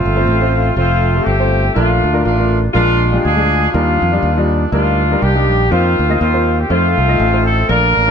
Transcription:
Already playing: horn section A3 C4 F4
0.06 fingered electric bass G1
0.16 upright piano A3 C4 F4 C5
0.27 fingered electric bass A1
0.40 upright piano A3 C4 F4 C5
0.76 fingered electric bass F1, upright piano A3 C4 F4 C5, horn section A3 C4 F4
1.15 upright piano A3 C4 F4 G4
1.24 fingered electric bass G1, horn section C4 G4
1.39 upright piano A3 C4 F4 C5
1.74 fingered electric bass A#1, upright piano A#2 A3 D4 F4 A#4, horn section A3 D4 F4
2.04 fingered electric bass D2
2.13 upright piano A3 D4 F4 A#4
2.25 fingered electric bass A1, horn section A3 D4 F4
2.38 upright piano A3 D4 F4 A#4
2.73 fingered electric bass A#1, upright piano A#2 G#3 D4 F4 A#4, horn section G#3 D4 F4
3.12 upright piano G#3 D4 F4 G4
3.22 fingered electric bass D2, horn section D4 F4 G#4
3.36 upright piano G#3 D4 F4 G#4
3.72 fingered electric bass D#2, upright piano D#3 G3 D4 D#4 A#4, horn section A#3 D4 F4
4.02 fingered electric bass F2
4.12 upright piano G3 D4 D#4 F4
4.23 fingered electric bass D#2
4.36 upright piano G3 D4 D#4 F4
4.72 fingered electric bass D2, upright piano G3 D4 D#4 A#4, horn section A#3 D4 F4
5.11 upright piano G3 D4 D#4 A#4
5.21 fingered electric bass C2, horn section A#3 D4 G4
5.35 upright piano G3 D4 D#4 G4
5.50 fingered electric bass A#1
5.70 fingered electric bass F2, upright piano A#3 D#4 F4 C5, horn section A#3 C4 F4
5.99 fingered electric bass D2
6.09 upright piano A#3 D#4 F4 D#5
6.19 fingered electric bass D#2, horn section A#3 C4 F4
6.33 upright piano A#3 D#4 F4 C5
6.58 horn section G4
6.69 fingered electric bass F2, upright piano A3 D#4 F4 C5, horn section A3 C4 F4
6.97 fingered electric bass C2
7.08 upright piano A3 D#4 F4 D#5
7.20 fingered electric bass A1
7.33 upright piano A3 D#4 F4 C5
7.44 horn section A4
7.68 fingered electric bass A#1, upright piano A#2 A3 D4 F4 A#4, horn section D4 F4 A#4
7.97 fingered electric bass A1
8.07 upright piano A3 D4

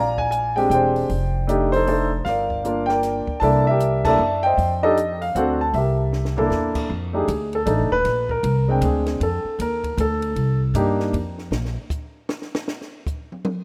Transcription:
Already playing: upright bass A#1, grand piano D5 F5 A#5
0.18 grand piano G#5, kick
0.31 grand piano G#5, closed hi-hat
0.56 grand piano G#3 C4 D4 G4 G5, open hi-hat
0.70 upright bass E1, grand piano G5, closed hi-hat
0.75 grand piano C5 D5
0.96 open hi-hat
1.09 upright bass F1, kick, open hi-hat
1.47 grand piano A3 D4 D#4 G4, closed hi-hat
1.72 grand piano A4 C5, open hi-hat
1.76 grand piano D#4
1.87 grand piano A3 D4 D#4 A4, open hi-hat
2.25 upright bass G1, grand piano A#4 D5 F5, kick, snare, open hi-hat
2.50 kick
2.64 grand piano A#3 D4 F4 A#4, closed hi-hat
2.86 grand piano A#4 G5, snare
2.90 grand piano D5
3.03 snare, closed hi-hat
3.27 muted upright bass stroke, kick
3.40 upright bass C2, grand piano A#3 D4 E4 A4 D5 A5, kick, open hi-hat
3.44 grand piano E5
3.67 grand piano G4 A#4 E5
3.80 closed hi-hat
4.04 grand piano A#3 D4 E4 A4 D5 A5, kick, crash
4.09 grand piano E5
4.18 upright bass F#2
4.43 grand piano C5 D#5 G5
4.57 upright bass F2, kick, open hi-hat
4.83 grand piano D4 D#4 G4 A4 D#5
4.97 closed hi-hat
5.22 grand piano F5, open hi-hat
5.35 upright bass D2, grand piano C4 D4 F#4 A4 C5 F#5, closed hi-hat
5.61 grand piano A5
5.74 upright bass C2, grand piano G4 A#4 E5, kick, open hi-hat
6.13 snare
6.25 snare
6.37 grand piano A#3 D4 E4 A4, floor tom
6.50 upright bass E2, snare
6.75 kick, crash
6.89 upright bass F2, kick
7.13 grand piano A3 D4 D#4 G4
7.17 grand piano G#4
7.28 upright bass D2, kick, hi-hat pedal, ride
7.53 grand piano A4, ride
7.66 upright bass A1, grand piano A3 D4 D#4 A4, kick, hi-hat pedal, ride
7.79 upright bass F1
7.91 upright bass D#1, grand piano B4
8.05 upright bass A#1, kick, snare, ride
8.29 grand piano A#4, kick
8.43 upright bass C2, kick, ride
8.68 grand piano G#3 C4 D4 G5
8.81 upright bass D2, grand piano G#4, kick, hi-hat pedal, ride
9.06 snare, ride
9.20 upright bass F2, grand piano A4, kick, ride
9.45 muted upright bass stroke
9.59 upright bass D#2, grand piano A#4, kick, hi-hat pedal, ride
9.84 kick, ride
9.97 upright bass D2, grand piano A4, kick, hi-hat pedal, ride
10.22 ride
10.36 upright bass C2, kick, ride
10.74 upright bass G2, grand piano A#3 D4 D#4 G4, kick, hi-hat pedal, ride
11.00 snare
11.13 upright bass F2, kick, ride
11.38 snare
11.51 upright bass A#1, snare
11.65 snare
11.90 kick, hi-hat pedal
12.29 snare
12.42 snare
12.55 snare
12.68 snare
12.81 snare
13.07 kick, hi-hat pedal
13.32 mid tom
13.45 mid tom

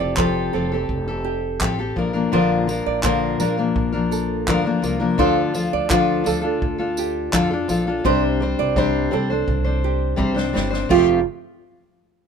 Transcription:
Already playing: steel-string acoustic guitar F3 C4 G4 A4
0.00 upright bass F1, nylon-string guitar D5
0.17 steel-string acoustic guitar F3 C4 G4 A4, nylon-string guitar C5, kick, clap
0.53 upright bass F1, steel-string acoustic guitar F3 C4 G4 A4, nylon-string guitar A4
0.72 steel-string acoustic guitar C4 G4 A4
0.89 upright bass F1, kick
1.08 steel-string acoustic guitar C4 G4 A4
1.24 nylon-string guitar G4
1.61 upright bass A1, steel-string acoustic guitar F3 C4 G4 A4, kick, clap
1.79 steel-string acoustic guitar C4 G4 A4
1.96 upright bass A#1, steel-string acoustic guitar F3 A#3 D4 A#4, kick
2.13 steel-string acoustic guitar F3 A#3 D4 A#4
2.32 upright bass A#1, steel-string acoustic guitar A#2 D3 F3 A#3 D4 A#4, nylon-string guitar C5
2.67 steel-string acoustic guitar F3 A#3 D4 A#4, tambourine
2.86 upright bass A#1, nylon-string guitar D5
3.03 steel-string acoustic guitar A#2 D3 F3 A#3 D4 A#4, nylon-string guitar C5, kick, clap
3.40 upright bass A#1, steel-string acoustic guitar F3 A#3 D4 A#4, nylon-string guitar A#4, tambourine
3.57 steel-string acoustic guitar F3 A#3 D4 A#4
3.76 upright bass A#1, kick
3.92 steel-string acoustic guitar F3 A#3 D4 A#4
4.11 nylon-string guitar A4, tambourine
4.47 upright bass D2, steel-string acoustic guitar A#2 D3 F3 A#3 D4 A#4, kick, clap
4.64 steel-string acoustic guitar F3 A#3 D4 A#4
4.82 upright bass C2, steel-string acoustic guitar F3 A#3 D4 A#4, tambourine
4.99 steel-string acoustic guitar F3 A#3 D4 A#4
5.18 upright bass D2, steel-string acoustic guitar D3 F3 D4 F4 A4, nylon-string guitar C5, kick
5.54 steel-string acoustic guitar F3 D4 F4 A4, tambourine
5.73 upright bass D2, nylon-string guitar D5
5.90 steel-string acoustic guitar D3 F3 D4 F4 A4, nylon-string guitar C5, kick, clap
6.24 upright bass D2, steel-string acoustic guitar F3 D4 F4 A4, nylon-string guitar A4, tambourine
6.41 steel-string acoustic guitar D4 F4 A4
6.62 upright bass D2, kick
6.78 steel-string acoustic guitar D4 F4 A4
6.97 nylon-string guitar G4, tambourine
7.32 upright bass F2, steel-string acoustic guitar D3 F3 D4 F4 A4, kick, clap
7.51 steel-string acoustic guitar D4 F4 A4
7.68 upright bass A#1, steel-string acoustic guitar F3 D4 F4 A4, tambourine
7.87 steel-string acoustic guitar D4 F4 A4
8.04 upright bass C2, steel-string acoustic guitar C3 G3 C4 D4 C5, nylon-string guitar C5, kick
8.40 steel-string acoustic guitar G3 C4 D4 C5
8.59 upright bass C2, nylon-string guitar D5
8.76 steel-string acoustic guitar C3 G3 C4 D4 C5, nylon-string guitar C5, kick
9.11 upright bass C2, steel-string acoustic guitar G3 C4 D4 C5, nylon-string guitar A4
9.30 steel-string acoustic guitar C4 D4 C5
9.48 upright bass C2, kick
9.64 steel-string acoustic guitar C4 D4 C5
9.84 nylon-string guitar G4
10.16 upright bass C2, steel-string acoustic guitar C3 G3 C4 D4 C5, kick
10.34 steel-string acoustic guitar C4 D4 C5, snare
10.53 upright bass G1, steel-string acoustic guitar G3 C4 D4 C5, snare
10.70 steel-string acoustic guitar C4 D4 C5, snare
10.89 upright bass F1, steel-string acoustic guitar F3 A3 C4 F4 G4, nylon-string guitar F4, kick, crash

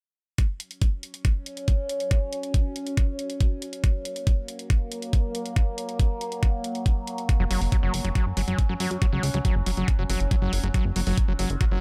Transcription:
0.38 synth drone F#3 C#4, kick, closed hi-hat
0.60 closed hi-hat
0.71 closed hi-hat
0.82 kick, closed hi-hat
1.03 closed hi-hat
1.14 closed hi-hat
1.25 kick, closed hi-hat
1.46 closed hi-hat
1.57 closed hi-hat
1.68 kick, closed hi-hat
1.89 closed hi-hat
2.00 closed hi-hat
2.11 kick, closed hi-hat
2.33 closed hi-hat
2.43 closed hi-hat
2.54 kick, closed hi-hat
2.76 closed hi-hat
2.87 closed hi-hat
2.97 kick, closed hi-hat
3.19 closed hi-hat
3.30 closed hi-hat
3.41 kick, closed hi-hat
3.62 closed hi-hat
3.73 closed hi-hat
3.84 synth drone A#3, kick, closed hi-hat
4.05 closed hi-hat
4.16 closed hi-hat
4.27 kick, closed hi-hat
4.48 closed hi-hat
4.59 closed hi-hat
4.70 kick, closed hi-hat
4.92 closed hi-hat
5.02 closed hi-hat
5.13 kick, closed hi-hat
5.35 closed hi-hat
5.46 closed hi-hat
5.56 kick, closed hi-hat
5.78 closed hi-hat
5.89 closed hi-hat
6.00 kick, closed hi-hat
6.21 closed hi-hat
6.32 closed hi-hat
6.43 kick, closed hi-hat
6.64 closed hi-hat
6.75 closed hi-hat
6.86 kick, closed hi-hat
7.07 closed hi-hat
7.18 closed hi-hat
7.29 synth drone C#4, kick, closed hi-hat
7.40 analog synth bass F#1, acid bass F#3
7.51 analog synth bass F#1, acid bass F#3, open hi-hat
7.61 analog synth bass F#1, open hi-hat
7.72 acid bass F#3, kick, closed hi-hat
7.83 analog synth bass F#1, acid bass F#3
7.94 analog synth bass F#1, open hi-hat
8.05 analog synth bass F#1, acid bass F#3, closed hi-hat
8.15 acid bass F#3, kick, closed hi-hat
8.26 analog synth bass F#1
8.37 analog synth bass G1, acid bass F#3, open hi-hat
8.48 analog synth bass F#1, acid bass F#3, closed hi-hat
8.59 kick, closed hi-hat
8.69 analog synth bass F#2, acid bass F#3
8.80 analog synth bass F#2, acid bass F#3, open hi-hat
8.91 analog synth bass F#2, closed hi-hat
9.02 acid bass F#3, kick, closed hi-hat
9.12 analog synth bass C#2, acid bass F#3
9.23 analog synth bass C#2, open hi-hat
9.34 analog synth bass C#2, acid bass F#3, closed hi-hat
9.45 acid bass F#3, kick, closed hi-hat
9.56 analog synth bass F#1
9.66 analog synth bass F#1, acid bass F#3, open hi-hat
9.77 analog synth bass F#1, acid bass F#3, closed hi-hat
9.88 kick, closed hi-hat
9.99 analog synth bass F#1, acid bass F#3
10.10 analog synth bass F#1, acid bass F#3, open hi-hat
10.20 analog synth bass F#1, closed hi-hat
10.31 acid bass F#3, kick, closed hi-hat
10.42 analog synth bass F#1, acid bass F#3
10.53 analog synth bass F#1, open hi-hat
10.64 analog synth bass F#1, acid bass F#3, closed hi-hat
10.74 acid bass F#3, synth drone F4, kick, closed hi-hat
10.85 analog synth bass F#1
10.96 analog synth bass F#1, acid bass F#3, open hi-hat
11.07 analog synth bass F#1, acid bass F#3, open hi-hat
11.18 kick, closed hi-hat
11.28 analog synth bass F#1, acid bass F#3
11.39 analog synth bass F#1, acid bass F#3, open hi-hat
11.50 analog synth bass F#1, closed hi-hat
11.61 acid bass F#3, kick, closed hi-hat
11.71 analog synth bass F#1, acid bass F#3

